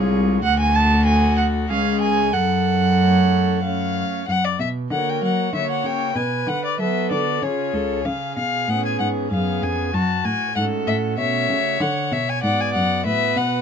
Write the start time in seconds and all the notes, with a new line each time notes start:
Already playing: C2 G#3 F4 G#4 C#5
0.43 D2 F#4 F#5
0.60 G#5
0.75 A5
1.06 F#4 A4 G#5
1.37 F#5
1.69 C#2 G#3 C#4 G#4 C#5 F5
2.01 G#5
2.33 F#2 A4 F#5
2.98 A3 C#4 C#5
3.63 A3 C#4 C#5 F5
4.28 F#2 F#5
4.45 D5
4.59 B2 E5
4.91 D3 A#3 F#4 A#4 C#5 F#5
5.09 G5
5.22 F#3 F#5
5.53 D3 A#3 F#4 C#5 E5
5.71 F#5
5.84 C#3 G5
6.15 B2 B4 G#5
6.47 D3 F#5
6.65 D5
6.79 F#3 B3 F#4 A4 B4 E5
7.11 D3 D5
7.42 C#3 C#4 F4 G#4 C#5
7.74 C#2 A4
8.05 C#3 G#4 F5
8.37 B2 F5
8.68 A2 B3 C#4 G#4 F#5
8.86 G#5
9.00 G#2 F#5
9.31 F#2 B3 C#4 G#4 F5
9.62 F2 G#5
9.93 F#2 F#4 A5
10.25 A2 G#5
10.56 G#2 A3 C#4 F#4 A4 F#5
10.87 A2 E5
11.18 B2 A3 C#4 F#4 C#5 E5
11.50 C#3
11.81 D3 F#5
12.12 B2 E5
12.29 G#5
12.43 G#2 B3 F#4 D5 F#5
12.61 G#5
12.74 F#2 F#5
13.05 A2 B3 F#4 B4 E5
13.37 B2 F#5